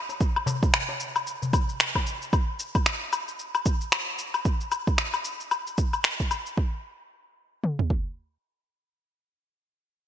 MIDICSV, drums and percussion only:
0, 0, Header, 1, 3, 480
1, 0, Start_track
1, 0, Tempo, 530973
1, 184, Time_signature, 4, 2, 24, 8
1, 9111, End_track
2, 0, Start_track
2, 0, Title_t, "Darbuka"
2, 84, Note_on_c, 9, 63, 38
2, 87, Note_on_c, 9, 62, 43
2, 174, Note_off_c, 9, 63, 0
2, 177, Note_off_c, 9, 62, 0
2, 418, Note_on_c, 9, 64, 90
2, 423, Note_on_c, 9, 63, 82
2, 509, Note_off_c, 9, 64, 0
2, 514, Note_off_c, 9, 63, 0
2, 803, Note_on_c, 9, 63, 64
2, 806, Note_on_c, 9, 62, 64
2, 893, Note_off_c, 9, 63, 0
2, 896, Note_off_c, 9, 62, 0
2, 1284, Note_on_c, 9, 63, 31
2, 1289, Note_on_c, 9, 64, 69
2, 1374, Note_off_c, 9, 63, 0
2, 1379, Note_off_c, 9, 64, 0
2, 1389, Note_on_c, 9, 63, 39
2, 1479, Note_off_c, 9, 63, 0
2, 1770, Note_on_c, 9, 63, 75
2, 1860, Note_off_c, 9, 63, 0
2, 9111, End_track
3, 0, Start_track
3, 0, Title_t, "Drums"
3, 87, Note_on_c, 9, 82, 29
3, 177, Note_off_c, 9, 82, 0
3, 186, Note_on_c, 9, 36, 111
3, 187, Note_on_c, 9, 82, 44
3, 277, Note_off_c, 9, 36, 0
3, 278, Note_off_c, 9, 82, 0
3, 329, Note_on_c, 9, 77, 77
3, 419, Note_off_c, 9, 77, 0
3, 427, Note_on_c, 9, 82, 82
3, 517, Note_off_c, 9, 82, 0
3, 567, Note_on_c, 9, 36, 99
3, 569, Note_on_c, 9, 82, 30
3, 657, Note_off_c, 9, 36, 0
3, 659, Note_off_c, 9, 82, 0
3, 666, Note_on_c, 9, 26, 93
3, 666, Note_on_c, 9, 77, 68
3, 667, Note_on_c, 9, 82, 38
3, 757, Note_off_c, 9, 26, 0
3, 757, Note_off_c, 9, 77, 0
3, 757, Note_off_c, 9, 82, 0
3, 905, Note_on_c, 9, 82, 80
3, 995, Note_off_c, 9, 82, 0
3, 1046, Note_on_c, 9, 77, 60
3, 1046, Note_on_c, 9, 82, 29
3, 1137, Note_off_c, 9, 77, 0
3, 1137, Note_off_c, 9, 82, 0
3, 1147, Note_on_c, 9, 82, 43
3, 1237, Note_off_c, 9, 82, 0
3, 1288, Note_on_c, 9, 82, 29
3, 1378, Note_off_c, 9, 82, 0
3, 1386, Note_on_c, 9, 36, 105
3, 1387, Note_on_c, 9, 77, 72
3, 1388, Note_on_c, 9, 82, 75
3, 1476, Note_off_c, 9, 36, 0
3, 1478, Note_off_c, 9, 77, 0
3, 1478, Note_off_c, 9, 82, 0
3, 1529, Note_on_c, 9, 82, 29
3, 1620, Note_off_c, 9, 82, 0
3, 1627, Note_on_c, 9, 26, 96
3, 1628, Note_on_c, 9, 82, 44
3, 1718, Note_off_c, 9, 26, 0
3, 1718, Note_off_c, 9, 82, 0
3, 1766, Note_on_c, 9, 36, 61
3, 1768, Note_on_c, 9, 77, 73
3, 1857, Note_off_c, 9, 36, 0
3, 1858, Note_off_c, 9, 77, 0
3, 1867, Note_on_c, 9, 82, 74
3, 1957, Note_off_c, 9, 82, 0
3, 2008, Note_on_c, 9, 82, 31
3, 2098, Note_off_c, 9, 82, 0
3, 2106, Note_on_c, 9, 36, 109
3, 2107, Note_on_c, 9, 77, 64
3, 2108, Note_on_c, 9, 82, 42
3, 2196, Note_off_c, 9, 36, 0
3, 2198, Note_off_c, 9, 77, 0
3, 2198, Note_off_c, 9, 82, 0
3, 2346, Note_on_c, 9, 82, 78
3, 2436, Note_off_c, 9, 82, 0
3, 2486, Note_on_c, 9, 36, 99
3, 2487, Note_on_c, 9, 77, 64
3, 2487, Note_on_c, 9, 82, 32
3, 2577, Note_off_c, 9, 36, 0
3, 2577, Note_off_c, 9, 77, 0
3, 2577, Note_off_c, 9, 82, 0
3, 2586, Note_on_c, 9, 26, 80
3, 2587, Note_on_c, 9, 82, 39
3, 2677, Note_off_c, 9, 26, 0
3, 2677, Note_off_c, 9, 82, 0
3, 2827, Note_on_c, 9, 77, 66
3, 2827, Note_on_c, 9, 82, 76
3, 2917, Note_off_c, 9, 77, 0
3, 2917, Note_off_c, 9, 82, 0
3, 2967, Note_on_c, 9, 82, 28
3, 3057, Note_off_c, 9, 82, 0
3, 3067, Note_on_c, 9, 82, 42
3, 3157, Note_off_c, 9, 82, 0
3, 3206, Note_on_c, 9, 77, 65
3, 3206, Note_on_c, 9, 82, 31
3, 3296, Note_off_c, 9, 77, 0
3, 3297, Note_off_c, 9, 82, 0
3, 3306, Note_on_c, 9, 36, 95
3, 3306, Note_on_c, 9, 82, 78
3, 3396, Note_off_c, 9, 36, 0
3, 3396, Note_off_c, 9, 82, 0
3, 3446, Note_on_c, 9, 82, 31
3, 3536, Note_off_c, 9, 82, 0
3, 3545, Note_on_c, 9, 26, 96
3, 3545, Note_on_c, 9, 77, 70
3, 3545, Note_on_c, 9, 82, 45
3, 3635, Note_off_c, 9, 26, 0
3, 3635, Note_off_c, 9, 77, 0
3, 3636, Note_off_c, 9, 82, 0
3, 3784, Note_on_c, 9, 82, 73
3, 3875, Note_off_c, 9, 82, 0
3, 3925, Note_on_c, 9, 77, 65
3, 3925, Note_on_c, 9, 82, 30
3, 4015, Note_off_c, 9, 77, 0
3, 4016, Note_off_c, 9, 82, 0
3, 4024, Note_on_c, 9, 82, 40
3, 4025, Note_on_c, 9, 36, 108
3, 4114, Note_off_c, 9, 82, 0
3, 4116, Note_off_c, 9, 36, 0
3, 4164, Note_on_c, 9, 82, 30
3, 4255, Note_off_c, 9, 82, 0
3, 4263, Note_on_c, 9, 77, 69
3, 4264, Note_on_c, 9, 82, 78
3, 4354, Note_off_c, 9, 77, 0
3, 4354, Note_off_c, 9, 82, 0
3, 4405, Note_on_c, 9, 82, 28
3, 4406, Note_on_c, 9, 36, 91
3, 4495, Note_off_c, 9, 82, 0
3, 4496, Note_off_c, 9, 36, 0
3, 4503, Note_on_c, 9, 26, 78
3, 4503, Note_on_c, 9, 82, 38
3, 4593, Note_off_c, 9, 26, 0
3, 4594, Note_off_c, 9, 82, 0
3, 4643, Note_on_c, 9, 77, 65
3, 4644, Note_on_c, 9, 82, 31
3, 4734, Note_off_c, 9, 77, 0
3, 4734, Note_off_c, 9, 82, 0
3, 4742, Note_on_c, 9, 82, 79
3, 4832, Note_off_c, 9, 82, 0
3, 4884, Note_on_c, 9, 82, 28
3, 4975, Note_off_c, 9, 82, 0
3, 4983, Note_on_c, 9, 77, 67
3, 4984, Note_on_c, 9, 82, 38
3, 5074, Note_off_c, 9, 77, 0
3, 5074, Note_off_c, 9, 82, 0
3, 5125, Note_on_c, 9, 82, 27
3, 5215, Note_off_c, 9, 82, 0
3, 5224, Note_on_c, 9, 82, 76
3, 5225, Note_on_c, 9, 36, 93
3, 5314, Note_off_c, 9, 82, 0
3, 5316, Note_off_c, 9, 36, 0
3, 5364, Note_on_c, 9, 77, 59
3, 5364, Note_on_c, 9, 82, 28
3, 5454, Note_off_c, 9, 77, 0
3, 5454, Note_off_c, 9, 82, 0
3, 5461, Note_on_c, 9, 26, 86
3, 5462, Note_on_c, 9, 82, 39
3, 5552, Note_off_c, 9, 26, 0
3, 5552, Note_off_c, 9, 82, 0
3, 5602, Note_on_c, 9, 82, 30
3, 5605, Note_on_c, 9, 36, 55
3, 5693, Note_off_c, 9, 82, 0
3, 5696, Note_off_c, 9, 36, 0
3, 5703, Note_on_c, 9, 77, 64
3, 5703, Note_on_c, 9, 82, 72
3, 5794, Note_off_c, 9, 77, 0
3, 5794, Note_off_c, 9, 82, 0
3, 5842, Note_on_c, 9, 82, 28
3, 5933, Note_off_c, 9, 82, 0
3, 5944, Note_on_c, 9, 36, 93
3, 6034, Note_off_c, 9, 36, 0
3, 6903, Note_on_c, 9, 47, 52
3, 6993, Note_off_c, 9, 47, 0
3, 7044, Note_on_c, 9, 43, 63
3, 7135, Note_off_c, 9, 43, 0
3, 7143, Note_on_c, 9, 36, 74
3, 7234, Note_off_c, 9, 36, 0
3, 9111, End_track
0, 0, End_of_file